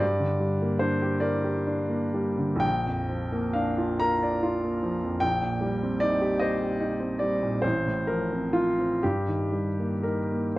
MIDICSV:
0, 0, Header, 1, 2, 480
1, 0, Start_track
1, 0, Key_signature, -2, "major"
1, 0, Tempo, 805369
1, 11, Time_signature, 6, 3, 24, 8
1, 492, Tempo, 858369
1, 972, Tempo, 934579
1, 1932, Tempo, 878477
1, 2412, Tempo, 791557
1, 3852, Tempo, 832178
1, 4332, Tempo, 906344
1, 4812, Tempo, 961538
1, 5292, Tempo, 1050788
1, 5785, End_track
2, 0, Start_track
2, 0, Title_t, "Grand piano"
2, 0, Program_c, 0, 0
2, 0, Control_c, 0, 64, 127
2, 0, Note_on_c, 0, 43, 62
2, 0, Note_on_c, 0, 74, 81
2, 22, Control_c, 0, 64, 0
2, 119, Note_on_c, 0, 50, 44
2, 132, Control_c, 0, 64, 127
2, 240, Note_on_c, 0, 55, 43
2, 316, Note_off_c, 0, 50, 0
2, 367, Note_on_c, 0, 58, 50
2, 438, Note_off_c, 0, 55, 0
2, 473, Note_on_c, 0, 72, 71
2, 481, Note_on_c, 0, 62, 53
2, 485, Note_off_c, 0, 74, 0
2, 559, Note_off_c, 0, 58, 0
2, 600, Note_on_c, 0, 67, 52
2, 672, Note_off_c, 0, 62, 0
2, 702, Note_on_c, 0, 74, 78
2, 711, Note_on_c, 0, 70, 56
2, 715, Note_off_c, 0, 72, 0
2, 792, Note_off_c, 0, 67, 0
2, 836, Note_on_c, 0, 67, 51
2, 913, Note_off_c, 0, 70, 0
2, 963, Note_on_c, 0, 62, 52
2, 1040, Note_off_c, 0, 67, 0
2, 1076, Note_on_c, 0, 58, 47
2, 1162, Note_off_c, 0, 62, 0
2, 1206, Note_on_c, 0, 55, 48
2, 1281, Note_off_c, 0, 58, 0
2, 1329, Note_on_c, 0, 50, 44
2, 1404, Note_off_c, 0, 55, 0
2, 1417, Note_off_c, 0, 43, 0
2, 1420, Note_on_c, 0, 34, 61
2, 1442, Note_on_c, 0, 79, 93
2, 1446, Note_off_c, 0, 74, 0
2, 1451, Note_off_c, 0, 50, 0
2, 1467, Control_c, 0, 64, 0
2, 1565, Control_c, 0, 64, 127
2, 1576, Note_on_c, 0, 41, 45
2, 1694, Note_on_c, 0, 53, 45
2, 1764, Note_off_c, 0, 41, 0
2, 1813, Note_on_c, 0, 58, 54
2, 1884, Note_off_c, 0, 53, 0
2, 1922, Note_on_c, 0, 77, 75
2, 1924, Note_off_c, 0, 79, 0
2, 1930, Note_on_c, 0, 62, 54
2, 2009, Note_off_c, 0, 58, 0
2, 2057, Note_on_c, 0, 65, 51
2, 2130, Note_off_c, 0, 62, 0
2, 2174, Note_off_c, 0, 77, 0
2, 2174, Note_on_c, 0, 82, 105
2, 2183, Note_on_c, 0, 70, 58
2, 2249, Note_off_c, 0, 65, 0
2, 2301, Note_on_c, 0, 74, 61
2, 2367, Note_off_c, 0, 70, 0
2, 2411, Note_on_c, 0, 65, 58
2, 2488, Note_off_c, 0, 74, 0
2, 2535, Note_on_c, 0, 58, 43
2, 2608, Note_off_c, 0, 65, 0
2, 2654, Note_on_c, 0, 53, 50
2, 2729, Note_off_c, 0, 58, 0
2, 2775, Note_on_c, 0, 41, 48
2, 2846, Note_off_c, 0, 53, 0
2, 2850, Note_off_c, 0, 34, 0
2, 2879, Note_on_c, 0, 79, 95
2, 2890, Note_on_c, 0, 34, 57
2, 2893, Note_off_c, 0, 82, 0
2, 2895, Note_off_c, 0, 41, 0
2, 2908, Control_c, 0, 64, 0
2, 2992, Control_c, 0, 64, 127
2, 3010, Note_on_c, 0, 46, 49
2, 3125, Note_on_c, 0, 55, 50
2, 3205, Note_off_c, 0, 46, 0
2, 3257, Note_on_c, 0, 60, 49
2, 3323, Note_off_c, 0, 55, 0
2, 3364, Note_on_c, 0, 74, 91
2, 3367, Note_off_c, 0, 79, 0
2, 3380, Note_on_c, 0, 63, 50
2, 3448, Note_off_c, 0, 60, 0
2, 3494, Note_on_c, 0, 67, 57
2, 3568, Note_off_c, 0, 63, 0
2, 3603, Note_on_c, 0, 75, 76
2, 3607, Note_off_c, 0, 74, 0
2, 3614, Note_on_c, 0, 72, 54
2, 3683, Note_off_c, 0, 67, 0
2, 3738, Note_on_c, 0, 67, 46
2, 3803, Note_off_c, 0, 72, 0
2, 3845, Note_off_c, 0, 75, 0
2, 3848, Note_on_c, 0, 63, 56
2, 3923, Note_off_c, 0, 67, 0
2, 3962, Note_on_c, 0, 60, 43
2, 4035, Note_off_c, 0, 63, 0
2, 4073, Note_on_c, 0, 74, 79
2, 4086, Note_on_c, 0, 55, 45
2, 4155, Note_off_c, 0, 60, 0
2, 4209, Note_on_c, 0, 46, 45
2, 4281, Note_off_c, 0, 55, 0
2, 4305, Note_off_c, 0, 34, 0
2, 4319, Note_on_c, 0, 72, 75
2, 4325, Note_off_c, 0, 74, 0
2, 4329, Note_on_c, 0, 33, 64
2, 4332, Note_off_c, 0, 46, 0
2, 4342, Control_c, 0, 64, 0
2, 4451, Control_c, 0, 64, 127
2, 4451, Note_on_c, 0, 45, 43
2, 4562, Note_on_c, 0, 70, 71
2, 4563, Note_off_c, 0, 72, 0
2, 4573, Note_on_c, 0, 53, 46
2, 4642, Note_off_c, 0, 45, 0
2, 4696, Note_on_c, 0, 60, 41
2, 4764, Note_off_c, 0, 53, 0
2, 4804, Note_on_c, 0, 65, 74
2, 4807, Note_off_c, 0, 70, 0
2, 4883, Note_off_c, 0, 60, 0
2, 4933, Note_on_c, 0, 60, 42
2, 5024, Note_off_c, 0, 33, 0
2, 5041, Note_off_c, 0, 65, 0
2, 5047, Note_off_c, 0, 60, 0
2, 5053, Note_on_c, 0, 67, 75
2, 5054, Control_c, 0, 64, 0
2, 5059, Note_on_c, 0, 43, 58
2, 5159, Control_c, 0, 64, 127
2, 5178, Note_on_c, 0, 51, 39
2, 5300, Note_on_c, 0, 55, 43
2, 5368, Note_off_c, 0, 51, 0
2, 5422, Note_on_c, 0, 58, 38
2, 5486, Note_off_c, 0, 55, 0
2, 5533, Note_on_c, 0, 70, 62
2, 5534, Note_off_c, 0, 67, 0
2, 5541, Note_on_c, 0, 63, 39
2, 5608, Note_off_c, 0, 58, 0
2, 5662, Note_on_c, 0, 58, 38
2, 5728, Note_off_c, 0, 63, 0
2, 5759, Note_off_c, 0, 43, 0
2, 5772, Note_off_c, 0, 70, 0
2, 5777, Note_off_c, 0, 58, 0
2, 5780, Control_c, 0, 64, 0
2, 5785, End_track
0, 0, End_of_file